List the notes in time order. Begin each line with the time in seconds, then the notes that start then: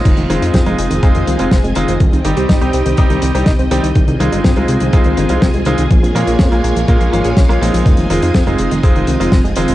Already playing: G#3 C4 D#4 F4
0.05 F1 D#3 C4 F4 G#4 D#5 G#5, kick, closed hi-hat, crash
0.17 F1 D#3, closed hi-hat
0.30 F1 D#3 G#3 C4 D#4 F4, closed hi-hat
0.42 F2 D#4, closed hi-hat
0.54 F2 C4, kick, snare, closed hi-hat
0.66 F1 G#3 C4 D#4 F4, closed hi-hat
0.78 F1 G#3, closed hi-hat
0.91 F1 D#3, closed hi-hat
1.03 F1 G#3 C4 D#4 F4 G#4, kick, closed hi-hat
1.15 F1 D#3, closed hi-hat
1.27 C2 D#3, closed hi-hat
1.39 F1 G#3 C4 D#4 F4, closed hi-hat
1.51 F1 C4, kick, snare, closed hi-hat
1.64 F1 G#3, closed hi-hat
1.75 F1 D#3 G#3 C4 D#4 F4, closed hi-hat
1.88 F1 D#3, closed hi-hat
2.00 C2 D#3 D#4 G4 G5, kick, closed hi-hat
2.13 C2 D#3, closed hi-hat
2.25 G1 D#3 G3 C4 D#4 G4, closed hi-hat
2.37 C2 G4, closed hi-hat
2.49 G1 D#4, kick, snare, closed hi-hat
2.61 C2 G3 C4 D#4 G4, closed hi-hat
2.73 C2 C4, closed hi-hat
2.86 C2 D#3, closed hi-hat
2.97 C2 G3 C4 D#4 G4 D#5, kick, closed hi-hat
3.10 C2 D#3, closed hi-hat
3.22 C2 D#3, closed hi-hat
3.34 C2 G3 C4 D#4 G4 C5, closed hi-hat
3.46 C2 D#4, kick, snare, closed hi-hat
3.59 C2 C4, closed hi-hat
3.71 C2 D#3 G3 C4 D#4 G4, closed hi-hat
3.83 C2 D#3, closed hi-hat
3.95 C2 D#3 C4 F4 G#4 G#5, kick, closed hi-hat
4.08 C2 D#3, closed hi-hat
4.20 C2 D#3 G#3 C4 D#4 F4, closed hi-hat
4.32 G1 D#4, closed hi-hat
4.44 G1 C4, kick, snare, closed hi-hat
4.56 C2 G#3 C4 D#4 F4, closed hi-hat
4.68 C2 G#3, closed hi-hat
4.80 C2 D#3, closed hi-hat
4.93 C2 G#3 C4 D#4 F4 G#4, kick, closed hi-hat
5.04 C2 D#3, closed hi-hat
5.17 G1 D#3, closed hi-hat
5.29 C2 G#3 C4 D#4 F4, closed hi-hat
5.42 C2 C4, kick, snare, closed hi-hat
5.54 C2 G#3, closed hi-hat
5.65 C2 D#3 G#3 C4 D#4 F4, closed hi-hat
5.78 C2 D#3, closed hi-hat
5.91 A#1 F3 A#3 C#5, kick, closed hi-hat
6.03 A#1 F3, closed hi-hat
6.15 A#2 F3 G#3 A#3 C#4 F4, closed hi-hat
6.27 A#1 F4, closed hi-hat
6.39 F2 C#4, kick, snare, closed hi-hat
6.52 A#1 G#3 A#3 C#4 F4, closed hi-hat
6.64 A#1 A#3, closed hi-hat
6.76 A#1 F3, closed hi-hat
6.88 A#2 G#3 A#3 C#4 F4 A#4, kick, closed hi-hat
7.00 A#1 F3, closed hi-hat
7.13 G#1 F3 G#3 A#3 C#4 F4, closed hi-hat
7.24 A#1 G#4, closed hi-hat
7.37 A#1 C#4, kick, snare, closed hi-hat
7.49 A#1 G#3 A#3 C#4 F4, closed hi-hat
7.61 A#1 F3 G#3 C4 D#4 F4, closed hi-hat
7.74 A#1 F3, closed hi-hat
7.86 F1 D#3 C4 D#5, kick, closed hi-hat
7.97 F1 D#3, closed hi-hat
8.10 F1 D#3 G#3 C4 D#4 F4, closed hi-hat
8.22 F2 D#4, closed hi-hat
8.34 F2 C4, kick, snare, closed hi-hat
8.47 F1 G#3 C4 D#4 F4, closed hi-hat
8.58 F1 G#3, closed hi-hat
8.71 F1 D#3, closed hi-hat
8.83 F1 G#3 C4 D#4 F4 G#4, kick, closed hi-hat
8.95 F1 D#3, closed hi-hat
9.07 C2 D#3, closed hi-hat
9.20 F1 G#3 C4 D#4 F4, closed hi-hat
9.32 F1 C4, kick, snare, closed hi-hat
9.44 F1 G#3, closed hi-hat
9.56 F1 D#3 G#3 C4 D#4 F4, closed hi-hat
9.68 F1 D#3, closed hi-hat